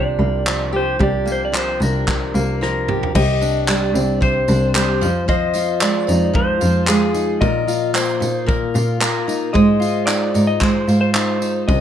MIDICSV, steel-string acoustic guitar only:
0, 0, Header, 1, 2, 480
1, 0, Start_track
1, 0, Tempo, 534283
1, 905, Time_signature, 4, 2, 24, 8
1, 10607, End_track
2, 0, Start_track
2, 0, Title_t, "Steel-string acoustic guitar"
2, 0, Program_c, 0, 25
2, 0, Note_on_c, 0, 48, 78
2, 0, Note_on_c, 0, 53, 64
2, 0, Note_on_c, 0, 58, 58
2, 0, Note_on_c, 0, 62, 58
2, 0, Note_on_c, 0, 67, 70
2, 158, Note_off_c, 0, 58, 0
2, 169, Note_on_c, 0, 58, 52
2, 401, Note_off_c, 0, 53, 0
2, 411, Note_on_c, 0, 53, 65
2, 648, Note_off_c, 0, 67, 0
2, 652, Note_on_c, 0, 67, 63
2, 881, Note_off_c, 0, 48, 0
2, 892, Note_on_c, 0, 48, 85
2, 893, Note_off_c, 0, 67, 0
2, 896, Note_on_c, 0, 67, 71
2, 1117, Note_off_c, 0, 58, 0
2, 1128, Note_on_c, 0, 58, 56
2, 1357, Note_off_c, 0, 53, 0
2, 1368, Note_on_c, 0, 53, 63
2, 1612, Note_off_c, 0, 62, 0
2, 1616, Note_on_c, 0, 62, 57
2, 1852, Note_off_c, 0, 48, 0
2, 1863, Note_on_c, 0, 48, 79
2, 2093, Note_off_c, 0, 58, 0
2, 2104, Note_on_c, 0, 58, 56
2, 2338, Note_off_c, 0, 53, 0
2, 2347, Note_on_c, 0, 53, 64
2, 2591, Note_off_c, 0, 67, 0
2, 2595, Note_on_c, 0, 67, 64
2, 2818, Note_off_c, 0, 48, 0
2, 2823, Note_off_c, 0, 67, 0
2, 2829, Note_on_c, 0, 48, 81
2, 2834, Note_on_c, 0, 67, 72
2, 2875, Note_off_c, 0, 62, 0
2, 2878, Note_off_c, 0, 58, 0
2, 2880, Note_off_c, 0, 53, 0
2, 3067, Note_on_c, 0, 62, 61
2, 3310, Note_on_c, 0, 55, 67
2, 3551, Note_on_c, 0, 60, 59
2, 3768, Note_off_c, 0, 48, 0
2, 3779, Note_on_c, 0, 48, 77
2, 4013, Note_off_c, 0, 62, 0
2, 4023, Note_on_c, 0, 62, 55
2, 4255, Note_off_c, 0, 55, 0
2, 4266, Note_on_c, 0, 55, 70
2, 4504, Note_on_c, 0, 53, 74
2, 4556, Note_off_c, 0, 48, 0
2, 4558, Note_off_c, 0, 62, 0
2, 4559, Note_off_c, 0, 55, 0
2, 4563, Note_off_c, 0, 67, 0
2, 4739, Note_off_c, 0, 53, 0
2, 4742, Note_on_c, 0, 53, 80
2, 4747, Note_on_c, 0, 72, 75
2, 4983, Note_on_c, 0, 65, 56
2, 5223, Note_on_c, 0, 56, 69
2, 5460, Note_off_c, 0, 60, 0
2, 5464, Note_on_c, 0, 63, 58
2, 5688, Note_off_c, 0, 53, 0
2, 5691, Note_on_c, 0, 53, 82
2, 5931, Note_off_c, 0, 65, 0
2, 5934, Note_on_c, 0, 65, 57
2, 6170, Note_off_c, 0, 56, 0
2, 6181, Note_on_c, 0, 56, 70
2, 6415, Note_off_c, 0, 63, 0
2, 6418, Note_on_c, 0, 63, 53
2, 6658, Note_on_c, 0, 46, 86
2, 6659, Note_off_c, 0, 72, 0
2, 6663, Note_on_c, 0, 70, 74
2, 6716, Note_off_c, 0, 56, 0
2, 6891, Note_off_c, 0, 65, 0
2, 6895, Note_on_c, 0, 65, 57
2, 6922, Note_off_c, 0, 63, 0
2, 7129, Note_on_c, 0, 58, 61
2, 7368, Note_on_c, 0, 63, 59
2, 7395, Note_off_c, 0, 53, 0
2, 7593, Note_off_c, 0, 46, 0
2, 7604, Note_on_c, 0, 46, 75
2, 7849, Note_off_c, 0, 65, 0
2, 7853, Note_on_c, 0, 65, 54
2, 8078, Note_off_c, 0, 58, 0
2, 8089, Note_on_c, 0, 58, 66
2, 8331, Note_off_c, 0, 63, 0
2, 8334, Note_on_c, 0, 63, 57
2, 8563, Note_off_c, 0, 58, 0
2, 8567, Note_on_c, 0, 56, 84
2, 8571, Note_off_c, 0, 70, 0
2, 8574, Note_on_c, 0, 72, 68
2, 8626, Note_off_c, 0, 46, 0
2, 8798, Note_off_c, 0, 65, 0
2, 8801, Note_on_c, 0, 65, 59
2, 8828, Note_off_c, 0, 63, 0
2, 9051, Note_on_c, 0, 63, 60
2, 9288, Note_off_c, 0, 63, 0
2, 9292, Note_on_c, 0, 63, 58
2, 9519, Note_off_c, 0, 56, 0
2, 9530, Note_on_c, 0, 56, 80
2, 9759, Note_off_c, 0, 65, 0
2, 9770, Note_on_c, 0, 65, 56
2, 10012, Note_off_c, 0, 63, 0
2, 10016, Note_on_c, 0, 63, 64
2, 10252, Note_off_c, 0, 63, 0
2, 10256, Note_on_c, 0, 63, 56
2, 10497, Note_on_c, 0, 48, 81
2, 10548, Note_off_c, 0, 56, 0
2, 10548, Note_off_c, 0, 65, 0
2, 10607, Note_off_c, 0, 48, 0
2, 10607, Note_off_c, 0, 63, 0
2, 10607, Note_off_c, 0, 72, 0
2, 10607, End_track
0, 0, End_of_file